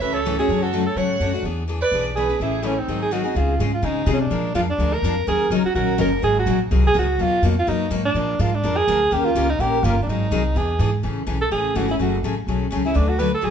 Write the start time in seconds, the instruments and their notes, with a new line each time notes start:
0.00 upright bass C#2, steel-string acoustic guitar C#3 E3 A3 C#4 F#4, alto saxophone B4, violin E5
0.13 alto saxophone A4, violin C#5
0.25 steel-string acoustic guitar C#3 E3 A3 C#4 F#4
0.38 steel-string acoustic guitar A3 C#4 F#4, alto saxophone G#4, violin C#5
0.48 upright bass F#2, steel-string acoustic guitar C#3 F#3 A3 D4 F#4
0.62 alto saxophone F#4, violin A4
0.73 steel-string acoustic guitar C#3 F#3 A3 D4 F#4
0.87 alto saxophone A4, violin C#5
0.95 upright bass G#2, steel-string acoustic guitar C#3 F#3 A3 D4 F#4, alto saxophone C#5, violin F#5
1.20 upright bass F#2, steel-string acoustic guitar C#3 F#3 A3 D4 F#4
1.33 steel-string acoustic guitar A3 D4 F#4
1.43 upright bass E2, steel-string acoustic guitar E3 B3 D4 G#4
1.68 steel-string acoustic guitar E3 B3 D4 G#4
1.81 alto saxophone B4, violin D5
1.91 upright bass B1, steel-string acoustic guitar E3 B3 D4 G#4
2.16 steel-string acoustic guitar E3 B3 D4 G#4, alto saxophone G#4, violin B4
2.29 steel-string acoustic guitar B3 D4 G#4
2.40 upright bass A1, steel-string acoustic guitar C#3 E3 A3 C#4 G#4, alto saxophone E4, violin G#4
2.63 steel-string acoustic guitar C#3 E3 A3 C#4 G#4, alto saxophone C#4, violin E4
2.78 alto saxophone C4, violin D#4
2.88 upright bass G#1, steel-string acoustic guitar D#3 F#3 C4 D#4 G#4
3.02 alto saxophone G#4
3.11 steel-string acoustic guitar D#3 F#3 C4 D#4 G#4, alto saxophone F#4
3.24 steel-string acoustic guitar C4 D#4 G#4
3.35 upright bass C#2, steel-string acoustic guitar C#3 G#3 C4 F4 G#4, alto saxophone F4
3.59 upright bass G#2, steel-string acoustic guitar C#3 G#3 C4 F4 G#4
3.74 alto saxophone F4
3.82 upright bass C#3, steel-string acoustic guitar C#3 G#3 C4 F4 G#4, alto saxophone D#4
4.06 upright bass C3, steel-string acoustic guitar C#3 G#3 C4 F4 G#4
4.13 alto saxophone C#4
4.20 alto saxophone D4
4.31 upright bass A#2, steel-string acoustic guitar F3 G#3 D4 F4 A#4
4.54 upright bass F2, steel-string acoustic guitar F3 G#3 D4 F4 A#4, alto saxophone F4
4.70 alto saxophone D4
4.78 upright bass D2, steel-string acoustic guitar F3 G#3 D4 F4 A#4
4.93 alto saxophone A#4
5.02 upright bass F2, steel-string acoustic guitar F3 G#3 D4 F4 A#4
5.27 upright bass D#2, steel-string acoustic guitar D#3 F#3 C#4 D#4 A#4, alto saxophone G#4
5.50 upright bass C#2, steel-string acoustic guitar D#3 F#3 C#4 D#4 A#4
5.65 alto saxophone F#4, muted upright bass stroke
5.75 upright bass A#1, steel-string acoustic guitar D#3 F#3 C#4 D#4 A#4, alto saxophone F#4
5.98 upright bass F#1, steel-string acoustic guitar D#3 F#3 C#4 D#4 A#4, alto saxophone A#4
6.22 upright bass G#1, steel-string acoustic guitar D#3 F#3 C4 D#4 G#4, alto saxophone G#4
6.39 alto saxophone F#4
6.46 upright bass A#1, steel-string acoustic guitar D#3 F#3 C4 D#4 G#4
6.71 upright bass C2, steel-string acoustic guitar D#3 F#3 C4 D#4 G#4
6.87 alto saxophone G#4
6.94 upright bass C#2, steel-string acoustic guitar D#3 F#3 C4 D#4 G#4
6.99 alto saxophone F#4
7.18 upright bass D#2, steel-string acoustic guitar B2 F#3 A#3 D#4 F#4, alto saxophone F4
7.42 upright bass F2, steel-string acoustic guitar B2 F#3 A#3 D#4 F#4
7.59 alto saxophone F4
7.67 upright bass F#2, steel-string acoustic guitar B2 F#3 A#3 D#4 F#4, alto saxophone D#4
7.90 upright bass G#2, steel-string acoustic guitar B2 F#3 A#3 D#4 F#4
8.05 alto saxophone D4
8.14 upright bass A#2, steel-string acoustic guitar F3 G#3 D4 F4 A#4
8.39 upright bass G#2, steel-string acoustic guitar F3 G#3 D4 F4 A#4, alto saxophone F4
8.55 alto saxophone D4
8.63 upright bass F2, steel-string acoustic guitar F3 G#3 D4 F4 A#4
8.77 alto saxophone G#4
8.88 upright bass D2, steel-string acoustic guitar F3 G#3 D4 F4 A#4
9.11 upright bass D#2, steel-string acoustic guitar D#3 A#3 C#4 G4 A#4, alto saxophone G4
9.25 alto saxophone F4
9.35 upright bass C#2, steel-string acoustic guitar D#3 A#3 C#4 G4 A#4
9.50 alto saxophone D#4
9.59 upright bass A#1, steel-string acoustic guitar D#3 A#3 C#4 G4 A#4, alto saxophone G4
9.83 upright bass G1, steel-string acoustic guitar D#3 A#3 C#4 G4 A#4, alto saxophone F4
10.03 upright bass G#1, alto saxophone D4
10.09 steel-string acoustic guitar D#3 F#3 C4 D#4 G#4, alto saxophone D#4
10.31 upright bass C2, steel-string acoustic guitar D#3 F#3 C4 D#4 G#4
10.55 upright bass E2, steel-string acoustic guitar E3 B3 D4 G#4, alto saxophone G#4
10.79 upright bass G#2, steel-string acoustic guitar E3 B3 D4 G#4
11.03 upright bass A1, steel-string acoustic guitar C#3 E3 A3 C#4 G#4
11.27 upright bass B1, steel-string acoustic guitar C#3 E3 A3 C#4 G#4
11.42 alto saxophone A4
11.51 upright bass A1, steel-string acoustic guitar C#3 E3 A3 C#4 G#4, alto saxophone G#4
11.75 upright bass G#1, steel-string acoustic guitar C#3 E3 A3 C#4 G#4, alto saxophone F#4
11.88 steel-string acoustic guitar A3 C#4 G#4, alto saxophone E4
11.99 upright bass F#1, steel-string acoustic guitar C#3 F#3 A3 C#4 G#4, alto saxophone F#4
12.23 upright bass A1, steel-string acoustic guitar C#3 F#3 A3 C#4 G#4
12.47 upright bass B1, steel-string acoustic guitar C#3 F#3 A3 C#4 G#4
12.71 upright bass C#2, steel-string acoustic guitar C#3 F#3 A3 C#4 G#4
12.85 steel-string acoustic guitar A3 C#4 G#4, alto saxophone E4
12.94 upright bass D2, steel-string acoustic guitar D3 F#3 A3 D4 F#4 B4, alto saxophone D4
13.09 alto saxophone F#4
13.19 steel-string acoustic guitar D3 F#3 A3 D4 F#4 B4, alto saxophone B4
13.35 alto saxophone A4
13.41 upright bass A1, steel-string acoustic guitar D3 F#3 A3 D4 F#4 B4, alto saxophone G#4